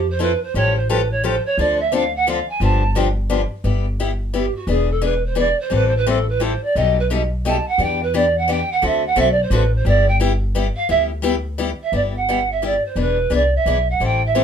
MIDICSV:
0, 0, Header, 1, 4, 480
1, 0, Start_track
1, 0, Tempo, 345224
1, 758, Time_signature, 3, 2, 24, 8
1, 20076, End_track
2, 0, Start_track
2, 0, Title_t, "Pan flute"
2, 0, Program_c, 0, 75
2, 140, Note_on_c, 0, 72, 99
2, 307, Note_on_c, 0, 71, 82
2, 328, Note_off_c, 0, 72, 0
2, 581, Note_off_c, 0, 71, 0
2, 602, Note_on_c, 0, 72, 90
2, 782, Note_on_c, 0, 73, 94
2, 803, Note_off_c, 0, 72, 0
2, 1049, Note_off_c, 0, 73, 0
2, 1057, Note_on_c, 0, 72, 85
2, 1255, Note_on_c, 0, 71, 82
2, 1276, Note_off_c, 0, 72, 0
2, 1535, Note_off_c, 0, 71, 0
2, 1542, Note_on_c, 0, 73, 100
2, 1735, Note_on_c, 0, 72, 86
2, 1756, Note_off_c, 0, 73, 0
2, 2025, Note_on_c, 0, 73, 92
2, 2045, Note_off_c, 0, 72, 0
2, 2211, Note_on_c, 0, 74, 93
2, 2232, Note_off_c, 0, 73, 0
2, 2493, Note_off_c, 0, 74, 0
2, 2499, Note_on_c, 0, 76, 93
2, 2704, Note_on_c, 0, 77, 83
2, 2725, Note_off_c, 0, 76, 0
2, 2979, Note_off_c, 0, 77, 0
2, 2997, Note_on_c, 0, 78, 98
2, 3175, Note_on_c, 0, 77, 87
2, 3195, Note_off_c, 0, 78, 0
2, 3454, Note_off_c, 0, 77, 0
2, 3465, Note_on_c, 0, 80, 94
2, 3652, Note_on_c, 0, 81, 94
2, 3673, Note_off_c, 0, 80, 0
2, 4123, Note_off_c, 0, 81, 0
2, 6064, Note_on_c, 0, 67, 66
2, 6318, Note_off_c, 0, 67, 0
2, 6329, Note_on_c, 0, 66, 80
2, 6524, Note_on_c, 0, 68, 81
2, 6545, Note_off_c, 0, 66, 0
2, 6807, Note_off_c, 0, 68, 0
2, 6821, Note_on_c, 0, 69, 80
2, 7007, Note_on_c, 0, 71, 73
2, 7028, Note_off_c, 0, 69, 0
2, 7288, Note_off_c, 0, 71, 0
2, 7310, Note_on_c, 0, 72, 84
2, 7489, Note_on_c, 0, 74, 91
2, 7510, Note_off_c, 0, 72, 0
2, 7769, Note_off_c, 0, 74, 0
2, 7789, Note_on_c, 0, 72, 86
2, 7992, Note_on_c, 0, 71, 83
2, 8013, Note_off_c, 0, 72, 0
2, 8161, Note_on_c, 0, 72, 83
2, 8182, Note_off_c, 0, 71, 0
2, 8300, Note_on_c, 0, 71, 81
2, 8321, Note_off_c, 0, 72, 0
2, 8462, Note_on_c, 0, 69, 72
2, 8482, Note_off_c, 0, 71, 0
2, 8735, Note_off_c, 0, 69, 0
2, 8745, Note_on_c, 0, 71, 86
2, 8946, Note_on_c, 0, 72, 79
2, 8967, Note_off_c, 0, 71, 0
2, 9217, Note_off_c, 0, 72, 0
2, 9227, Note_on_c, 0, 74, 84
2, 9411, Note_on_c, 0, 75, 94
2, 9432, Note_off_c, 0, 74, 0
2, 9689, Note_off_c, 0, 75, 0
2, 9728, Note_on_c, 0, 71, 83
2, 9827, Note_off_c, 0, 71, 0
2, 10397, Note_on_c, 0, 81, 90
2, 10643, Note_off_c, 0, 81, 0
2, 10680, Note_on_c, 0, 78, 97
2, 10880, Note_on_c, 0, 79, 102
2, 10901, Note_off_c, 0, 78, 0
2, 11163, Note_on_c, 0, 71, 81
2, 11184, Note_off_c, 0, 79, 0
2, 11337, Note_on_c, 0, 74, 87
2, 11358, Note_off_c, 0, 71, 0
2, 11648, Note_on_c, 0, 78, 98
2, 11669, Note_off_c, 0, 74, 0
2, 11832, Note_on_c, 0, 79, 101
2, 11853, Note_off_c, 0, 78, 0
2, 12123, Note_on_c, 0, 78, 94
2, 12144, Note_off_c, 0, 79, 0
2, 12320, Note_on_c, 0, 76, 90
2, 12341, Note_off_c, 0, 78, 0
2, 12583, Note_off_c, 0, 76, 0
2, 12599, Note_on_c, 0, 78, 106
2, 12779, Note_on_c, 0, 76, 94
2, 12799, Note_off_c, 0, 78, 0
2, 12946, Note_on_c, 0, 74, 88
2, 12967, Note_off_c, 0, 76, 0
2, 13102, Note_on_c, 0, 72, 81
2, 13123, Note_off_c, 0, 74, 0
2, 13259, Note_on_c, 0, 71, 79
2, 13280, Note_off_c, 0, 72, 0
2, 13533, Note_off_c, 0, 71, 0
2, 13560, Note_on_c, 0, 72, 85
2, 13732, Note_on_c, 0, 74, 92
2, 13753, Note_off_c, 0, 72, 0
2, 14009, Note_off_c, 0, 74, 0
2, 14014, Note_on_c, 0, 79, 101
2, 14124, Note_off_c, 0, 79, 0
2, 14961, Note_on_c, 0, 77, 99
2, 15137, Note_off_c, 0, 77, 0
2, 15161, Note_on_c, 0, 76, 91
2, 15331, Note_off_c, 0, 76, 0
2, 16443, Note_on_c, 0, 76, 79
2, 16599, Note_off_c, 0, 76, 0
2, 16620, Note_on_c, 0, 74, 76
2, 16703, Note_off_c, 0, 74, 0
2, 16911, Note_on_c, 0, 78, 77
2, 17401, Note_on_c, 0, 76, 77
2, 17422, Note_off_c, 0, 78, 0
2, 17597, Note_on_c, 0, 74, 73
2, 17618, Note_off_c, 0, 76, 0
2, 17872, Note_on_c, 0, 72, 72
2, 17893, Note_off_c, 0, 74, 0
2, 18047, Note_off_c, 0, 72, 0
2, 18081, Note_on_c, 0, 71, 83
2, 18554, Note_on_c, 0, 74, 81
2, 18575, Note_off_c, 0, 71, 0
2, 18822, Note_off_c, 0, 74, 0
2, 18854, Note_on_c, 0, 76, 85
2, 19325, Note_on_c, 0, 78, 88
2, 19346, Note_off_c, 0, 76, 0
2, 19495, Note_off_c, 0, 78, 0
2, 19525, Note_on_c, 0, 79, 100
2, 19770, Note_off_c, 0, 79, 0
2, 19828, Note_on_c, 0, 76, 86
2, 20076, Note_off_c, 0, 76, 0
2, 20076, End_track
3, 0, Start_track
3, 0, Title_t, "Steel-string acoustic guitar"
3, 0, Program_c, 1, 25
3, 264, Note_on_c, 1, 53, 76
3, 276, Note_on_c, 1, 60, 88
3, 281, Note_on_c, 1, 69, 83
3, 285, Note_on_c, 1, 64, 91
3, 421, Note_off_c, 1, 53, 0
3, 426, Note_off_c, 1, 60, 0
3, 429, Note_off_c, 1, 69, 0
3, 431, Note_off_c, 1, 64, 0
3, 766, Note_on_c, 1, 53, 62
3, 771, Note_on_c, 1, 55, 64
3, 775, Note_on_c, 1, 61, 70
3, 780, Note_on_c, 1, 69, 70
3, 784, Note_on_c, 1, 67, 72
3, 1045, Note_off_c, 1, 53, 0
3, 1047, Note_off_c, 1, 55, 0
3, 1049, Note_off_c, 1, 61, 0
3, 1052, Note_off_c, 1, 69, 0
3, 1054, Note_off_c, 1, 67, 0
3, 1243, Note_on_c, 1, 55, 84
3, 1244, Note_on_c, 1, 53, 84
3, 1248, Note_on_c, 1, 61, 80
3, 1251, Note_on_c, 1, 67, 94
3, 1256, Note_on_c, 1, 69, 102
3, 1390, Note_off_c, 1, 55, 0
3, 1391, Note_off_c, 1, 53, 0
3, 1393, Note_off_c, 1, 61, 0
3, 1394, Note_off_c, 1, 67, 0
3, 1397, Note_off_c, 1, 69, 0
3, 1718, Note_on_c, 1, 53, 83
3, 1719, Note_on_c, 1, 55, 73
3, 1725, Note_on_c, 1, 61, 87
3, 1728, Note_on_c, 1, 67, 91
3, 1735, Note_on_c, 1, 69, 97
3, 1867, Note_off_c, 1, 53, 0
3, 1868, Note_off_c, 1, 55, 0
3, 1871, Note_off_c, 1, 61, 0
3, 1873, Note_off_c, 1, 67, 0
3, 1876, Note_off_c, 1, 69, 0
3, 2205, Note_on_c, 1, 50, 61
3, 2210, Note_on_c, 1, 53, 63
3, 2210, Note_on_c, 1, 60, 65
3, 2214, Note_on_c, 1, 62, 67
3, 2228, Note_on_c, 1, 69, 71
3, 2484, Note_off_c, 1, 50, 0
3, 2486, Note_off_c, 1, 53, 0
3, 2487, Note_off_c, 1, 60, 0
3, 2488, Note_off_c, 1, 62, 0
3, 2495, Note_off_c, 1, 69, 0
3, 2667, Note_on_c, 1, 50, 80
3, 2669, Note_on_c, 1, 53, 79
3, 2675, Note_on_c, 1, 60, 92
3, 2676, Note_on_c, 1, 62, 86
3, 2687, Note_on_c, 1, 69, 96
3, 2821, Note_off_c, 1, 50, 0
3, 2823, Note_off_c, 1, 53, 0
3, 2825, Note_off_c, 1, 60, 0
3, 2826, Note_off_c, 1, 62, 0
3, 2831, Note_off_c, 1, 69, 0
3, 3154, Note_on_c, 1, 50, 83
3, 3161, Note_on_c, 1, 53, 81
3, 3161, Note_on_c, 1, 62, 93
3, 3166, Note_on_c, 1, 60, 94
3, 3169, Note_on_c, 1, 69, 97
3, 3305, Note_off_c, 1, 50, 0
3, 3308, Note_off_c, 1, 53, 0
3, 3308, Note_off_c, 1, 62, 0
3, 3311, Note_off_c, 1, 60, 0
3, 3312, Note_off_c, 1, 69, 0
3, 3630, Note_on_c, 1, 50, 64
3, 3632, Note_on_c, 1, 53, 69
3, 3641, Note_on_c, 1, 59, 67
3, 3646, Note_on_c, 1, 67, 72
3, 3649, Note_on_c, 1, 62, 70
3, 3916, Note_off_c, 1, 50, 0
3, 3916, Note_off_c, 1, 53, 0
3, 3921, Note_off_c, 1, 59, 0
3, 3923, Note_off_c, 1, 67, 0
3, 3925, Note_off_c, 1, 62, 0
3, 4106, Note_on_c, 1, 50, 80
3, 4115, Note_on_c, 1, 53, 96
3, 4116, Note_on_c, 1, 59, 91
3, 4124, Note_on_c, 1, 62, 99
3, 4131, Note_on_c, 1, 67, 90
3, 4260, Note_off_c, 1, 50, 0
3, 4265, Note_off_c, 1, 53, 0
3, 4265, Note_off_c, 1, 59, 0
3, 4270, Note_off_c, 1, 62, 0
3, 4273, Note_off_c, 1, 67, 0
3, 4583, Note_on_c, 1, 50, 82
3, 4583, Note_on_c, 1, 53, 87
3, 4586, Note_on_c, 1, 59, 88
3, 4588, Note_on_c, 1, 62, 91
3, 4599, Note_on_c, 1, 67, 97
3, 4738, Note_off_c, 1, 50, 0
3, 4738, Note_off_c, 1, 53, 0
3, 4740, Note_off_c, 1, 59, 0
3, 4741, Note_off_c, 1, 62, 0
3, 4747, Note_off_c, 1, 67, 0
3, 5065, Note_on_c, 1, 55, 62
3, 5067, Note_on_c, 1, 59, 60
3, 5075, Note_on_c, 1, 67, 68
3, 5077, Note_on_c, 1, 64, 64
3, 5352, Note_off_c, 1, 55, 0
3, 5353, Note_off_c, 1, 59, 0
3, 5357, Note_off_c, 1, 67, 0
3, 5358, Note_off_c, 1, 64, 0
3, 5558, Note_on_c, 1, 55, 71
3, 5560, Note_on_c, 1, 59, 85
3, 5563, Note_on_c, 1, 64, 90
3, 5564, Note_on_c, 1, 67, 86
3, 5705, Note_off_c, 1, 55, 0
3, 5706, Note_off_c, 1, 59, 0
3, 5708, Note_off_c, 1, 64, 0
3, 5709, Note_off_c, 1, 67, 0
3, 6028, Note_on_c, 1, 55, 79
3, 6029, Note_on_c, 1, 59, 74
3, 6032, Note_on_c, 1, 64, 89
3, 6045, Note_on_c, 1, 67, 87
3, 6180, Note_off_c, 1, 55, 0
3, 6181, Note_off_c, 1, 59, 0
3, 6182, Note_off_c, 1, 64, 0
3, 6189, Note_off_c, 1, 67, 0
3, 6499, Note_on_c, 1, 52, 65
3, 6510, Note_on_c, 1, 59, 64
3, 6518, Note_on_c, 1, 62, 67
3, 6521, Note_on_c, 1, 68, 70
3, 6789, Note_off_c, 1, 52, 0
3, 6794, Note_off_c, 1, 59, 0
3, 6798, Note_off_c, 1, 62, 0
3, 6799, Note_off_c, 1, 68, 0
3, 6973, Note_on_c, 1, 52, 81
3, 6975, Note_on_c, 1, 59, 89
3, 6977, Note_on_c, 1, 62, 85
3, 6988, Note_on_c, 1, 68, 85
3, 7132, Note_off_c, 1, 52, 0
3, 7133, Note_off_c, 1, 59, 0
3, 7134, Note_off_c, 1, 62, 0
3, 7140, Note_off_c, 1, 68, 0
3, 7441, Note_on_c, 1, 52, 83
3, 7452, Note_on_c, 1, 59, 78
3, 7452, Note_on_c, 1, 62, 87
3, 7463, Note_on_c, 1, 68, 94
3, 7606, Note_off_c, 1, 52, 0
3, 7611, Note_off_c, 1, 62, 0
3, 7612, Note_off_c, 1, 59, 0
3, 7617, Note_off_c, 1, 68, 0
3, 7923, Note_on_c, 1, 52, 58
3, 7927, Note_on_c, 1, 55, 70
3, 7936, Note_on_c, 1, 60, 69
3, 7942, Note_on_c, 1, 64, 61
3, 7944, Note_on_c, 1, 69, 73
3, 8220, Note_off_c, 1, 52, 0
3, 8222, Note_off_c, 1, 55, 0
3, 8226, Note_off_c, 1, 60, 0
3, 8229, Note_off_c, 1, 64, 0
3, 8231, Note_off_c, 1, 69, 0
3, 8432, Note_on_c, 1, 55, 86
3, 8433, Note_on_c, 1, 52, 86
3, 8434, Note_on_c, 1, 60, 91
3, 8439, Note_on_c, 1, 69, 85
3, 8445, Note_on_c, 1, 64, 83
3, 8581, Note_off_c, 1, 55, 0
3, 8582, Note_off_c, 1, 52, 0
3, 8582, Note_off_c, 1, 60, 0
3, 8585, Note_off_c, 1, 69, 0
3, 8588, Note_off_c, 1, 64, 0
3, 8897, Note_on_c, 1, 52, 80
3, 8899, Note_on_c, 1, 55, 78
3, 8900, Note_on_c, 1, 60, 82
3, 8914, Note_on_c, 1, 64, 88
3, 8915, Note_on_c, 1, 69, 88
3, 9053, Note_off_c, 1, 52, 0
3, 9054, Note_off_c, 1, 55, 0
3, 9055, Note_off_c, 1, 60, 0
3, 9062, Note_off_c, 1, 64, 0
3, 9062, Note_off_c, 1, 69, 0
3, 9400, Note_on_c, 1, 47, 67
3, 9403, Note_on_c, 1, 55, 58
3, 9406, Note_on_c, 1, 57, 64
3, 9413, Note_on_c, 1, 63, 69
3, 9422, Note_on_c, 1, 67, 72
3, 9678, Note_off_c, 1, 47, 0
3, 9680, Note_off_c, 1, 55, 0
3, 9681, Note_off_c, 1, 57, 0
3, 9684, Note_off_c, 1, 63, 0
3, 9689, Note_off_c, 1, 67, 0
3, 9874, Note_on_c, 1, 47, 78
3, 9880, Note_on_c, 1, 55, 82
3, 9885, Note_on_c, 1, 63, 95
3, 9886, Note_on_c, 1, 57, 97
3, 9891, Note_on_c, 1, 67, 92
3, 10021, Note_off_c, 1, 47, 0
3, 10025, Note_off_c, 1, 55, 0
3, 10027, Note_off_c, 1, 63, 0
3, 10028, Note_off_c, 1, 57, 0
3, 10030, Note_off_c, 1, 67, 0
3, 10358, Note_on_c, 1, 47, 81
3, 10362, Note_on_c, 1, 55, 77
3, 10370, Note_on_c, 1, 57, 86
3, 10371, Note_on_c, 1, 63, 91
3, 10377, Note_on_c, 1, 67, 96
3, 10504, Note_off_c, 1, 47, 0
3, 10505, Note_off_c, 1, 55, 0
3, 10510, Note_off_c, 1, 57, 0
3, 10510, Note_off_c, 1, 63, 0
3, 10513, Note_off_c, 1, 67, 0
3, 10825, Note_on_c, 1, 52, 57
3, 10828, Note_on_c, 1, 59, 64
3, 10842, Note_on_c, 1, 62, 65
3, 10847, Note_on_c, 1, 67, 71
3, 11110, Note_off_c, 1, 52, 0
3, 11112, Note_off_c, 1, 59, 0
3, 11119, Note_off_c, 1, 62, 0
3, 11121, Note_off_c, 1, 67, 0
3, 11314, Note_on_c, 1, 52, 83
3, 11324, Note_on_c, 1, 59, 90
3, 11325, Note_on_c, 1, 67, 96
3, 11328, Note_on_c, 1, 62, 85
3, 11461, Note_off_c, 1, 52, 0
3, 11466, Note_off_c, 1, 59, 0
3, 11467, Note_off_c, 1, 67, 0
3, 11468, Note_off_c, 1, 62, 0
3, 11787, Note_on_c, 1, 52, 83
3, 11801, Note_on_c, 1, 62, 78
3, 11803, Note_on_c, 1, 59, 84
3, 11812, Note_on_c, 1, 67, 85
3, 11938, Note_off_c, 1, 52, 0
3, 11945, Note_off_c, 1, 62, 0
3, 11946, Note_off_c, 1, 59, 0
3, 11950, Note_off_c, 1, 67, 0
3, 12263, Note_on_c, 1, 50, 64
3, 12263, Note_on_c, 1, 57, 67
3, 12275, Note_on_c, 1, 66, 74
3, 12276, Note_on_c, 1, 60, 70
3, 12279, Note_on_c, 1, 69, 70
3, 12549, Note_off_c, 1, 50, 0
3, 12549, Note_off_c, 1, 57, 0
3, 12555, Note_off_c, 1, 60, 0
3, 12555, Note_off_c, 1, 66, 0
3, 12557, Note_off_c, 1, 69, 0
3, 12732, Note_on_c, 1, 50, 81
3, 12736, Note_on_c, 1, 57, 88
3, 12744, Note_on_c, 1, 60, 84
3, 12745, Note_on_c, 1, 66, 90
3, 12756, Note_on_c, 1, 69, 105
3, 12890, Note_off_c, 1, 50, 0
3, 12892, Note_off_c, 1, 57, 0
3, 12896, Note_off_c, 1, 60, 0
3, 12896, Note_off_c, 1, 66, 0
3, 12902, Note_off_c, 1, 69, 0
3, 13220, Note_on_c, 1, 50, 89
3, 13229, Note_on_c, 1, 60, 86
3, 13232, Note_on_c, 1, 57, 87
3, 13244, Note_on_c, 1, 69, 86
3, 13245, Note_on_c, 1, 66, 97
3, 13374, Note_off_c, 1, 50, 0
3, 13379, Note_off_c, 1, 60, 0
3, 13380, Note_off_c, 1, 57, 0
3, 13386, Note_off_c, 1, 69, 0
3, 13387, Note_off_c, 1, 66, 0
3, 13706, Note_on_c, 1, 55, 59
3, 13712, Note_on_c, 1, 59, 70
3, 13714, Note_on_c, 1, 64, 67
3, 13720, Note_on_c, 1, 67, 69
3, 13990, Note_off_c, 1, 55, 0
3, 13993, Note_off_c, 1, 59, 0
3, 13994, Note_off_c, 1, 64, 0
3, 13997, Note_off_c, 1, 67, 0
3, 14179, Note_on_c, 1, 55, 83
3, 14188, Note_on_c, 1, 59, 87
3, 14192, Note_on_c, 1, 64, 98
3, 14194, Note_on_c, 1, 67, 105
3, 14334, Note_off_c, 1, 55, 0
3, 14338, Note_off_c, 1, 59, 0
3, 14340, Note_off_c, 1, 64, 0
3, 14341, Note_off_c, 1, 67, 0
3, 14667, Note_on_c, 1, 55, 82
3, 14672, Note_on_c, 1, 59, 87
3, 14679, Note_on_c, 1, 64, 95
3, 14681, Note_on_c, 1, 67, 93
3, 14817, Note_off_c, 1, 55, 0
3, 14820, Note_off_c, 1, 59, 0
3, 14823, Note_off_c, 1, 64, 0
3, 14824, Note_off_c, 1, 67, 0
3, 15138, Note_on_c, 1, 59, 65
3, 15140, Note_on_c, 1, 55, 62
3, 15144, Note_on_c, 1, 64, 72
3, 15151, Note_on_c, 1, 67, 70
3, 15426, Note_off_c, 1, 59, 0
3, 15427, Note_off_c, 1, 55, 0
3, 15429, Note_off_c, 1, 64, 0
3, 15433, Note_off_c, 1, 67, 0
3, 15602, Note_on_c, 1, 55, 91
3, 15617, Note_on_c, 1, 59, 94
3, 15622, Note_on_c, 1, 64, 92
3, 15627, Note_on_c, 1, 67, 107
3, 15765, Note_off_c, 1, 55, 0
3, 15773, Note_off_c, 1, 59, 0
3, 15775, Note_off_c, 1, 64, 0
3, 15778, Note_off_c, 1, 67, 0
3, 16103, Note_on_c, 1, 55, 88
3, 16107, Note_on_c, 1, 59, 91
3, 16116, Note_on_c, 1, 64, 91
3, 16126, Note_on_c, 1, 67, 97
3, 16255, Note_off_c, 1, 55, 0
3, 16258, Note_off_c, 1, 59, 0
3, 16262, Note_off_c, 1, 64, 0
3, 16267, Note_off_c, 1, 67, 0
3, 16584, Note_on_c, 1, 55, 59
3, 16587, Note_on_c, 1, 59, 58
3, 16595, Note_on_c, 1, 64, 60
3, 16604, Note_on_c, 1, 67, 67
3, 16870, Note_off_c, 1, 55, 0
3, 16872, Note_off_c, 1, 59, 0
3, 16875, Note_off_c, 1, 64, 0
3, 16880, Note_off_c, 1, 67, 0
3, 17082, Note_on_c, 1, 55, 77
3, 17087, Note_on_c, 1, 59, 75
3, 17097, Note_on_c, 1, 64, 84
3, 17102, Note_on_c, 1, 67, 89
3, 17226, Note_off_c, 1, 55, 0
3, 17228, Note_off_c, 1, 59, 0
3, 17233, Note_off_c, 1, 64, 0
3, 17236, Note_off_c, 1, 67, 0
3, 17548, Note_on_c, 1, 55, 73
3, 17555, Note_on_c, 1, 59, 84
3, 17559, Note_on_c, 1, 64, 78
3, 17563, Note_on_c, 1, 67, 82
3, 17699, Note_off_c, 1, 55, 0
3, 17702, Note_off_c, 1, 59, 0
3, 17704, Note_off_c, 1, 64, 0
3, 17706, Note_off_c, 1, 67, 0
3, 18021, Note_on_c, 1, 52, 63
3, 18025, Note_on_c, 1, 59, 65
3, 18032, Note_on_c, 1, 62, 63
3, 18038, Note_on_c, 1, 68, 63
3, 18309, Note_off_c, 1, 52, 0
3, 18311, Note_off_c, 1, 59, 0
3, 18315, Note_off_c, 1, 62, 0
3, 18318, Note_off_c, 1, 68, 0
3, 18492, Note_on_c, 1, 52, 71
3, 18501, Note_on_c, 1, 59, 81
3, 18507, Note_on_c, 1, 62, 83
3, 18517, Note_on_c, 1, 68, 87
3, 18652, Note_off_c, 1, 52, 0
3, 18656, Note_off_c, 1, 59, 0
3, 18659, Note_off_c, 1, 62, 0
3, 18664, Note_off_c, 1, 68, 0
3, 18996, Note_on_c, 1, 52, 83
3, 19011, Note_on_c, 1, 62, 83
3, 19014, Note_on_c, 1, 59, 84
3, 19021, Note_on_c, 1, 68, 80
3, 19144, Note_off_c, 1, 52, 0
3, 19152, Note_off_c, 1, 62, 0
3, 19153, Note_off_c, 1, 59, 0
3, 19157, Note_off_c, 1, 68, 0
3, 19468, Note_on_c, 1, 52, 59
3, 19476, Note_on_c, 1, 55, 59
3, 19482, Note_on_c, 1, 60, 65
3, 19485, Note_on_c, 1, 69, 63
3, 19490, Note_on_c, 1, 64, 66
3, 19754, Note_off_c, 1, 52, 0
3, 19758, Note_off_c, 1, 55, 0
3, 19761, Note_off_c, 1, 60, 0
3, 19763, Note_off_c, 1, 69, 0
3, 19765, Note_off_c, 1, 64, 0
3, 19950, Note_on_c, 1, 52, 83
3, 19952, Note_on_c, 1, 55, 91
3, 19954, Note_on_c, 1, 60, 87
3, 19963, Note_on_c, 1, 69, 90
3, 19965, Note_on_c, 1, 64, 85
3, 20076, Note_off_c, 1, 52, 0
3, 20076, Note_off_c, 1, 55, 0
3, 20076, Note_off_c, 1, 60, 0
3, 20076, Note_off_c, 1, 64, 0
3, 20076, Note_off_c, 1, 69, 0
3, 20076, End_track
4, 0, Start_track
4, 0, Title_t, "Upright bass"
4, 0, Program_c, 2, 32
4, 0, Note_on_c, 2, 41, 89
4, 458, Note_off_c, 2, 41, 0
4, 755, Note_on_c, 2, 33, 87
4, 1907, Note_off_c, 2, 33, 0
4, 2190, Note_on_c, 2, 38, 89
4, 3344, Note_off_c, 2, 38, 0
4, 3617, Note_on_c, 2, 31, 92
4, 4775, Note_off_c, 2, 31, 0
4, 5061, Note_on_c, 2, 31, 88
4, 6217, Note_off_c, 2, 31, 0
4, 6492, Note_on_c, 2, 28, 85
4, 7651, Note_off_c, 2, 28, 0
4, 7948, Note_on_c, 2, 33, 86
4, 9100, Note_off_c, 2, 33, 0
4, 9391, Note_on_c, 2, 35, 88
4, 10542, Note_off_c, 2, 35, 0
4, 10818, Note_on_c, 2, 40, 87
4, 11974, Note_off_c, 2, 40, 0
4, 12273, Note_on_c, 2, 38, 88
4, 12655, Note_off_c, 2, 38, 0
4, 12737, Note_on_c, 2, 35, 77
4, 13150, Note_off_c, 2, 35, 0
4, 13212, Note_on_c, 2, 33, 86
4, 13627, Note_off_c, 2, 33, 0
4, 13693, Note_on_c, 2, 31, 95
4, 14851, Note_off_c, 2, 31, 0
4, 15141, Note_on_c, 2, 38, 91
4, 16296, Note_off_c, 2, 38, 0
4, 16575, Note_on_c, 2, 31, 78
4, 17734, Note_off_c, 2, 31, 0
4, 18013, Note_on_c, 2, 28, 83
4, 18405, Note_off_c, 2, 28, 0
4, 18497, Note_on_c, 2, 36, 74
4, 18912, Note_off_c, 2, 36, 0
4, 18986, Note_on_c, 2, 35, 77
4, 19397, Note_off_c, 2, 35, 0
4, 19466, Note_on_c, 2, 33, 85
4, 20076, Note_off_c, 2, 33, 0
4, 20076, End_track
0, 0, End_of_file